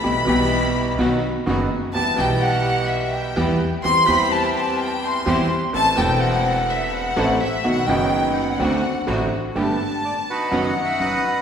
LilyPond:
<<
  \new Staff \with { instrumentName = "Violin section" } { \time 4/4 \key e \minor \tempo 4 = 126 b''2~ b''8 r4. | a''8 g''8 fis''4 e''8 g''4 r8 | c'''8 b''8 a''8 a''8 g''8 c'''4 r8 | a''8 g''8 fis''4 e''8 fis''4 e''8 |
fis''8 g''4 fis''2 r8 | \key b \phrygian a''2 fis''2 | }
  \new Staff \with { instrumentName = "Bandoneon" } { \time 4/4 \key e \minor << { r1 | r1 | r1 | r1 |
r1 | \key b \phrygian r4 d''8 b'8~ \tuplet 3/2 { b'8 dis''8 e''8 } fis''4 | } \\ { r1 | r1 | r1 | r1 |
r1 | r4. <ees' fis'>4. <b' dis''>4 | } >> }
  \new Staff \with { instrumentName = "String section" } { \time 4/4 \key e \minor <b e' g'>8 <b e' g'>4. <b dis' fis'>8 r8 <b dis' fis'>8 r8 | <b e' g'>8 <b e' g'>2~ <b e' g'>8 <b e' g'>8 r8 | <c' e' g'>8 <c' e' g'>2~ <c' e' g'>8 <c' e' g'>8 r8 | <c' e' a'>8 <c' e'>2~ <c' e'>8 <c' e' a'>8 r8 |
<b dis' fis'>8 <fis b dis'>4. <c' d' fis'>8 r8 <c' d' fis'>8 r8 | \key b \phrygian <a b g'>8 r4. <fis b dis'>8 r8 <fis b dis'>8 r8 | }
  \new Staff \with { instrumentName = "Grand piano" } { \clef bass \time 4/4 \key e \minor <b,, b, e g b g'>8 <b,, b, e g b g'>4. <b,, b, dis fis b fis'>8 r8 <fis,, fis, dis fis b fis'>8 r8 | <e, e g b g'>8 <b,, b, e g b g'>2~ <b,, b, e g b g'>8 <e, e g b g'>8 r8 | <e, e g c' g'>8 <e, e g c' g'>2~ <e, e g c' g'>8 <e, e g c' g'>8 r8 | <a,, a, e a c' a'>8 <e,, e, e a c' a'>2~ <e,, e, e a c' a'>8 <a,, a, e a c' a'>8 r8 |
<b,, b, dis fis b fis'>8 <fis,, fis, dis fis b dis'>4. <d, d a c' fis'>8 r8 <a,, a, d a c' fis'>8 r8 | \key b \phrygian <g,, g, d a b g'>8 r4. <fis, dis fis b fis'>8 r8 <fis, fis>8 r8 | }
  \new Staff \with { instrumentName = "Upright bass" } { \clef bass \time 4/4 \key e \minor b,,8 b,,4. b,,8 r8 fis,,8 r8 | e,8 b,,2~ b,,8 e,8 r8 | e,8 e,2~ e,8 e,8 r8 | a,,8 e,,2~ e,,8 a,,8 r8 |
b,,8 fis,,4. d,8 r8 a,,8 r8 | \key b \phrygian g,,8 r4. fis,,8 r8 fis,,8 r8 | }
>>